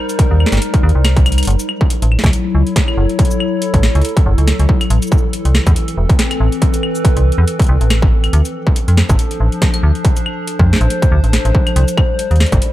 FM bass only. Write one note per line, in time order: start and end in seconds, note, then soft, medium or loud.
0.31 0.45 D#2 medium
0.52 0.59 G1 loud
0.83 0.92 D#2 loud
0.95 1.43 C2 medium
1.47 1.56 F#1 loud
2.02 2.17 A1 medium
2.24 2.30 C#2 loud
2.55 2.63 C#2 medium
2.97 3.06 F#1 medium
3.74 3.88 A1 medium
3.95 4.02 C#2 medium
4.26 4.35 F#1 loud
4.38 4.52 C#2 medium
4.60 4.66 C#2 medium
4.90 4.99 A1 loud
5.45 5.60 C2 medium
5.67 5.73 E2 loud
5.97 6.06 E1 medium
6.40 6.49 A1 loud
7.17 7.31 C2 medium
7.38 7.45 E2 loud
7.69 7.77 C2 loud
7.81 8.29 A1 medium
8.33 8.42 D2 loud
8.88 9.02 F2 medium
9.09 9.16 A1 loud
9.40 9.49 A1 medium
9.83 9.92 D2 loud
10.59 10.74 F2 medium
10.81 10.88 A1 loud
11.12 11.20 D2 loud
11.24 11.38 A1 medium
11.45 11.52 A1 medium
11.76 11.85 C2 loud
12.31 12.45 D#2 medium
12.52 12.59 G1 loud